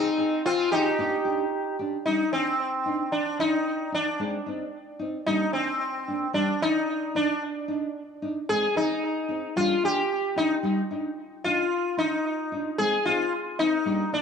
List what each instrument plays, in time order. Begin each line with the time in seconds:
Already playing: sitar C4 D#4
0.18 nylon-string guitar D#4 G#4
0.46 sitar C4 F4
0.72 sitar D#4 G4, nylon-string guitar D#4 G#4
0.99 nylon-string guitar A#3 D4 G4
1.25 nylon-string guitar D4 G4
1.79 nylon-string guitar D4 G4
2.06 nylon-string guitar G3 D4 D#4, sitar D#4
2.33 sitar C4, nylon-string guitar D4
2.86 nylon-string guitar D4 D#4
3.12 sitar D4
3.39 nylon-string guitar D4 D#4, sitar D#4
3.92 nylon-string guitar D4 D#4, sitar D4
4.20 nylon-string guitar G#3 C4 D#4
4.46 nylon-string guitar C4 D#4
4.99 nylon-string guitar C4 D#4
5.26 nylon-string guitar G3 A#3 D4, sitar D#4
5.53 nylon-string guitar A#3 D4, sitar C4
6.08 nylon-string guitar A#3 D4
6.33 nylon-string guitar G3 D4 D#4, sitar D4
6.61 nylon-string guitar D4 D#4, sitar D#4
7.15 sitar D4, nylon-string guitar D4 D#4
7.68 nylon-string guitar D4 D#4
8.22 nylon-string guitar D4 D#4
8.49 nylon-string guitar G#3 C4 D#4, sitar G#4
8.76 nylon-string guitar C4 D#4, sitar D#4
9.29 nylon-string guitar C4 D#4
9.56 nylon-string guitar G3 A#3 D4, sitar F4
9.84 nylon-string guitar A#3 D4, sitar G4
10.36 nylon-string guitar A#3 D4, sitar D#4
10.63 nylon-string guitar G3 D#4, muted nylon-string guitar stroke
10.91 nylon-string guitar D4 D#4
11.45 nylon-string guitar D4 D#4, sitar F4
11.97 nylon-string guitar D4 D#4, sitar D#4
12.52 nylon-string guitar D4 D#4
12.78 nylon-string guitar G#3 C4 D#4, sitar G#4
13.05 nylon-string guitar C4 D#4, sitar F4
13.59 nylon-string guitar C4 D#4, sitar D#4
13.85 nylon-string guitar G3 A#3 D4
14.13 nylon-string guitar A#3 D4, sitar D4